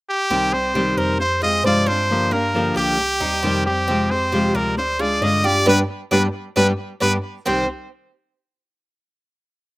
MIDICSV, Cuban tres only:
0, 0, Header, 1, 2, 480
1, 0, Start_track
1, 0, Key_signature, -3, "minor"
1, 0, Tempo, 447427
1, 335, Time_signature, 4, 2, 24, 8
1, 10488, End_track
2, 0, Start_track
2, 0, Title_t, "Cuban tres"
2, 0, Program_c, 0, 25
2, 326, Note_on_c, 0, 60, 73
2, 794, Note_off_c, 0, 60, 0
2, 806, Note_on_c, 0, 67, 63
2, 1041, Note_off_c, 0, 67, 0
2, 1046, Note_on_c, 0, 72, 61
2, 1513, Note_off_c, 0, 72, 0
2, 1519, Note_on_c, 0, 68, 63
2, 1756, Note_off_c, 0, 68, 0
2, 1760, Note_on_c, 0, 72, 59
2, 1996, Note_off_c, 0, 72, 0
2, 1999, Note_on_c, 0, 62, 78
2, 2467, Note_off_c, 0, 62, 0
2, 2479, Note_on_c, 0, 58, 71
2, 2947, Note_off_c, 0, 58, 0
2, 2958, Note_on_c, 0, 67, 69
2, 3425, Note_off_c, 0, 67, 0
2, 3438, Note_on_c, 0, 63, 72
2, 3672, Note_off_c, 0, 63, 0
2, 3676, Note_on_c, 0, 60, 72
2, 4144, Note_off_c, 0, 60, 0
2, 4159, Note_on_c, 0, 60, 74
2, 4625, Note_off_c, 0, 60, 0
2, 4637, Note_on_c, 0, 67, 65
2, 4871, Note_off_c, 0, 67, 0
2, 4878, Note_on_c, 0, 74, 72
2, 5345, Note_off_c, 0, 74, 0
2, 5356, Note_on_c, 0, 68, 71
2, 5592, Note_off_c, 0, 68, 0
2, 5599, Note_on_c, 0, 74, 63
2, 5833, Note_off_c, 0, 74, 0
2, 5836, Note_on_c, 0, 67, 73
2, 6061, Note_off_c, 0, 67, 0
2, 6071, Note_on_c, 0, 62, 98
2, 6076, Note_on_c, 0, 67, 84
2, 6079, Note_on_c, 0, 71, 76
2, 6231, Note_off_c, 0, 62, 0
2, 6231, Note_off_c, 0, 67, 0
2, 6231, Note_off_c, 0, 71, 0
2, 6555, Note_on_c, 0, 62, 99
2, 6560, Note_on_c, 0, 67, 85
2, 6565, Note_on_c, 0, 71, 80
2, 6713, Note_off_c, 0, 67, 0
2, 6713, Note_off_c, 0, 71, 0
2, 6714, Note_off_c, 0, 62, 0
2, 7036, Note_on_c, 0, 62, 88
2, 7041, Note_on_c, 0, 67, 87
2, 7044, Note_on_c, 0, 71, 76
2, 7194, Note_off_c, 0, 62, 0
2, 7194, Note_off_c, 0, 71, 0
2, 7195, Note_off_c, 0, 67, 0
2, 7514, Note_on_c, 0, 62, 80
2, 7520, Note_on_c, 0, 67, 76
2, 7524, Note_on_c, 0, 71, 83
2, 7674, Note_off_c, 0, 62, 0
2, 7674, Note_off_c, 0, 71, 0
2, 7675, Note_off_c, 0, 67, 0
2, 7999, Note_on_c, 0, 60, 81
2, 8004, Note_on_c, 0, 67, 75
2, 8010, Note_on_c, 0, 72, 80
2, 8227, Note_off_c, 0, 60, 0
2, 8230, Note_off_c, 0, 67, 0
2, 8231, Note_off_c, 0, 72, 0
2, 10488, End_track
0, 0, End_of_file